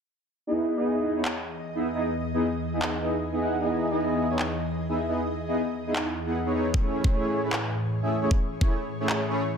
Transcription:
0.47 E2 E3 B3 D#4 E4 G#4 D#5
0.77 B3 D#4 E4 G#4 D#5
1.16 B3 D#4 E4 G#4 C#5
1.25 clap
1.75 B3 D#4 E4 G#4 E5
1.95 B3 D#4 E4 G#4 D#5
2.34 B3 D#4 E4 G#4 D#5
2.73 B3 D#4 E4 G#4 D#5
2.82 clap
3.02 B3 D#4 E4 G#4 D#5
3.32 B3 D#4 E4 G#4 D#5
3.41 B3 D#4 E4 G#4 F#5
3.61 B3 D#4 E4 G#4 D#5
3.91 B3 D#4 E4 G#4 D#5
4.30 B3 D#4 E4 G#4 C#5
4.39 clap
4.89 B3 D#4 E4 G#4 E5
5.09 B3 D#4 E4 G#4 D#5
5.48 B3 D#4 E4 G#4 D#5
5.87 B3 D#4 E4 G#4 D#5
5.96 clap
6.26 B3 D#4 E4 G#4 F#5
6.46 B3 D#4 E4 G#4 C#5
6.55 B3 D#4 E4 G#4 C#5
6.74 A2 E3 A3 C#4 E4 G#4 C#5, kick
7.04 A3 C#4 E4 G#4 C#5, kick
7.44 A3 E4 G#4 B4
7.53 clap
8.02 A3 C#4 E4 G#4 E5
8.22 A3 C#4 E4 G#4 C#5
8.31 kick
8.61 A3 C#4 E4 G#4 C#5, kick
9.00 A3 C#4 E4 G#4 C#5
9.10 clap
9.29 A3 C#4 E4 G#4 C#5

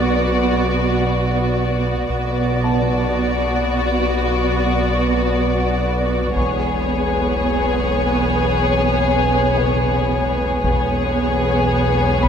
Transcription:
Already playing: B1 B2 B3 F#4 B4 D5 F#5
2.09 B1 B2 B3 F#4 B4 D5 F#5
2.64 A5
6.35 E1 B1 E2 B3 G#4 B4 C#5 G#5 C#6, taiko
9.57 B4 G#5
10.61 E1 B1 E2 B3 G#4 B4 C#5 G#5, taiko
12.22 B5, taiko

